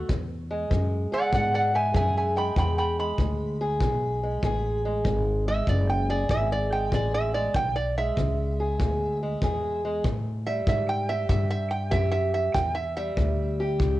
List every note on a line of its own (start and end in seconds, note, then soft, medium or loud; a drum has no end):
0.09 0.67 E2 medium
0.09 0.69 E2 medium
0.09 kick medium
0.51 1.73 G#3 medium
0.70 1.09 F#2 medium
0.70 1.29 E3 medium
0.70 kick medium
1.12 1.94 G#4 medium
1.12 1.32 D5 medium
1.12 1.33 F#5 medium
1.12 muted upright bass stroke soft
1.32 1.93 G#2 medium
1.32 1.90 B2 medium
1.32 1.53 D5 medium
1.32 1.54 F#5 medium
1.32 kick medium
1.54 1.73 D5 medium
1.54 1.74 F#5 medium
1.74 2.36 G#3 medium
1.74 1.94 E5 medium
1.74 1.95 G#5 medium
1.94 2.55 F#2 medium
1.94 2.52 E3 medium
1.94 3.61 G#4 medium
1.94 2.15 E5 medium
1.94 2.16 G#5 medium
1.94 kick medium
2.17 2.36 E5 medium
2.17 2.37 G#5 medium
2.36 2.99 G#3 medium
2.36 2.56 G5 medium
2.36 2.57 B5 medium
2.56 3.17 E2 medium
2.56 3.15 E2 medium
2.56 2.77 G5 medium
2.56 2.78 B5 medium
2.56 kick medium
2.78 2.97 G5 medium
2.78 2.98 B5 medium
2.99 4.23 G#3 medium
2.99 4.81 B5 medium
3.18 3.79 D2 medium
3.18 3.77 E3 medium
3.18 kick medium
3.61 4.44 G#4 medium
3.80 4.41 B1 medium
3.80 4.39 B2 medium
3.80 kick medium
4.23 4.85 G#3 medium
4.43 5.03 A1 medium
4.43 5.01 E3 medium
4.43 6.09 G#4 medium
4.43 kick medium
4.85 5.48 G#3 medium
5.05 5.65 G#1 medium
5.05 5.64 E2 medium
5.05 kick medium
5.48 6.72 G#3 medium
5.48 5.68 E5 medium
5.67 6.28 F#1 medium
5.67 6.25 E3 medium
5.67 5.88 D5 medium
5.67 kick medium
5.90 6.09 G5 medium
6.10 6.92 G#4 medium
6.10 6.30 D5 medium
6.29 6.90 G#1 medium
6.29 6.88 B2 medium
6.29 6.50 E5 medium
6.29 kick medium
6.52 6.72 D5 medium
6.72 7.34 G#3 medium
6.72 6.92 G5 medium
6.92 7.52 A1 medium
6.92 7.51 E3 medium
6.92 7.53 G#4 medium
6.92 7.13 D5 medium
6.92 kick medium
7.14 7.34 E5 medium
7.34 7.53 G#3 medium
7.34 7.54 D5 medium
7.54 8.15 B1 medium
7.54 8.13 E2 medium
7.54 7.75 G5 medium
7.54 kick medium
7.76 7.96 D5 medium
7.97 9.22 G#3 medium
7.97 9.80 E5 medium
8.17 8.77 C#2 medium
8.17 8.76 E3 medium
8.17 kick medium
8.60 9.42 G#4 medium
8.80 9.40 D2 medium
8.80 9.38 B2 medium
8.80 kick medium
9.23 9.83 G#3 medium
9.42 10.03 E2 medium
9.42 10.01 E3 medium
9.42 10.03 G#4 medium
9.42 kick medium
9.85 10.03 G#3 medium
10.04 10.63 A2 medium
10.04 10.65 A2 medium
10.04 kick medium
10.47 12.57 G3 medium
10.47 10.67 E5 medium
10.67 11.28 G#2 medium
10.67 11.26 E3 medium
10.67 10.88 E5 medium
10.67 kick medium
10.89 11.09 G5 medium
11.09 11.93 G4 medium
11.09 11.28 E5 medium
11.29 11.88 E2 medium
11.29 11.90 G2 medium
11.29 11.49 E5 medium
11.29 kick medium
11.51 11.71 E5 medium
11.71 11.91 G5 medium
11.91 12.53 F#2 medium
11.91 12.51 E3 medium
11.91 12.57 G4 medium
11.91 12.10 E5 medium
11.91 kick medium
12.12 12.33 E5 medium
12.34 12.54 E5 medium
12.54 13.15 E2 medium
12.54 13.13 A2 medium
12.54 12.75 G5 medium
12.54 kick medium
12.75 12.95 E5 medium
12.97 14.00 G3 medium
12.97 14.00 E5 medium
13.17 13.78 D2 medium
13.17 13.76 E3 medium
13.17 kick medium
13.60 14.00 G4 medium
13.79 14.00 C#2 medium
13.79 14.00 E2 medium
13.79 kick medium